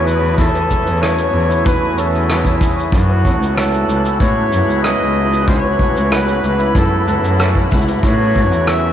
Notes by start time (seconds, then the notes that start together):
Already playing: E2 C#3 E3 F#3 A3 B3 C#4 E4 C#5 D#6
0.05 E4 B4, cabasa
0.21 E3
0.38 A4, kick, cabasa
0.53 E3, cabasa
0.69 A3, kick, cabasa
0.85 E2 E3, cabasa
1.02 C#4 C#5, cross-stick, cabasa
1.18 cabasa
1.33 E2 E3
1.49 E4, cabasa
1.65 E3 B4, kick, cabasa
1.81 A3
1.97 E2 C#4 A4, cabasa
2.14 cabasa
2.28 G#4, cross-stick, cabasa
2.45 E3, kick, cabasa
2.61 E4, kick, cabasa
2.76 C#4, cabasa
2.92 F#2 F#4 F#5 F#6, kick, cabasa
3.09 E3
3.25 A3, kick, cabasa
3.40 C#2 E3 B3, cabasa
3.56 C#4 A4, cross-stick, cabasa
3.63 cabasa
3.66 cabasa
3.70 cabasa
3.73 cabasa
3.88 C#2 E3, cabasa
4.04 E4, cabasa
4.20 A2 E3 C#5, kick, cabasa
4.29 E4
4.37 A3
4.52 F#2 E3, cabasa
4.68 C#2, cabasa
4.83 C#4 D#5, cross-stick, cabasa
5.00 C#2 E3
5.16 E4
5.32 E3, cabasa
5.48 C#5, kick, cabasa
5.63 E3
5.79 A3, kick
5.96 C#2 E3, cabasa
6.12 C#4 B4, cross-stick, cabasa
6.28 cabasa
6.44 C#2 E3, cabasa
6.59 E4, cabasa
6.75 F#2 E3 A4, kick, cabasa
6.91 A3
7.07 C#2 E3 A4, cabasa
7.23 F#2, cabasa
7.39 C#4, cross-stick, cabasa
7.55 E3, kick
7.71 C#2 E4, kick, cabasa
7.77 cabasa
7.82 cabasa
7.87 E3, cabasa
7.93 cabasa
7.98 cabasa
8.03 A2 C#3 C#5, kick, cabasa
8.19 E3
8.35 A3, kick
8.51 E2 E3, cabasa
8.67 C#4 E5, cross-stick, cabasa